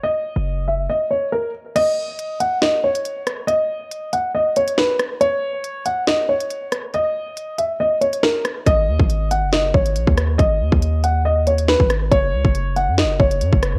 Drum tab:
CC |----------------|x---------------|----------------|----------------|
HH |----------------|x---x-x----xx-x-|x---x-x---xx--x-|x---x-x----xx-x-|
SD |----------------|--------o-----r-|------------o-r-|--------o-----r-|
BD |----------------|----------------|----------------|----------------|

CC |----------------|----------------|----------------|----------------|
HH |x---x-x---xx--x-|x---x-x----xx-x-|x---x-x---xx--x-|x---x-x----xx-x-|
SD |------------o-r-|--------o-----r-|------------o-r-|--------o-----r-|
BD |----------------|o--o------o--o--|o--o---------o--|o--o------o--o--|